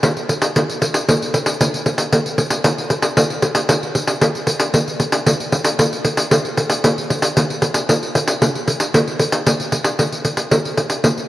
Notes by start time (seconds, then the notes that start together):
0.03 pandeiro
0.17 pandeiro
0.29 pandeiro
0.42 pandeiro
0.56 pandeiro
0.69 pandeiro
0.82 pandeiro
0.94 pandeiro
1.08 pandeiro
1.22 pandeiro
1.34 pandeiro
1.46 pandeiro
1.61 pandeiro
1.74 pandeiro
1.86 pandeiro
1.98 pandeiro
2.12 pandeiro
2.26 pandeiro
2.38 pandeiro
2.50 pandeiro
2.64 pandeiro
2.78 pandeiro
2.90 pandeiro
3.02 pandeiro
3.17 pandeiro
3.30 pandeiro
3.42 pandeiro
3.55 pandeiro
3.69 pandeiro
3.83 pandeiro
3.95 pandeiro
4.07 pandeiro
4.21 pandeiro
4.35 pandeiro
4.47 pandeiro
4.60 pandeiro
4.74 pandeiro
4.88 pandeiro
5.00 pandeiro
5.12 pandeiro
5.27 pandeiro
5.40 pandeiro
5.52 pandeiro
5.65 pandeiro
5.79 pandeiro
5.93 pandeiro
6.05 pandeiro
6.17 pandeiro
6.31 pandeiro
6.45 pandeiro
6.57 pandeiro
6.70 pandeiro
6.84 pandeiro
6.98 pandeiro
7.10 pandeiro
7.22 pandeiro
7.37 pandeiro
7.50 pandeiro
7.62 pandeiro
7.74 pandeiro
7.89 pandeiro
8.03 pandeiro
8.15 pandeiro
8.28 pandeiro
8.42 pandeiro
8.55 pandeiro
8.68 pandeiro
8.80 pandeiro
8.94 pandeiro
9.07 pandeiro
9.19 pandeiro
9.32 pandeiro
9.47 pandeiro
9.60 pandeiro
9.72 pandeiro
9.84 pandeiro
9.99 pandeiro
10.12 pandeiro
10.25 pandeiro
10.37 pandeiro
10.51 pandeiro
10.65 pandeiro
10.77 pandeiro
10.90 pandeiro
11.04 pandeiro
11.18 pandeiro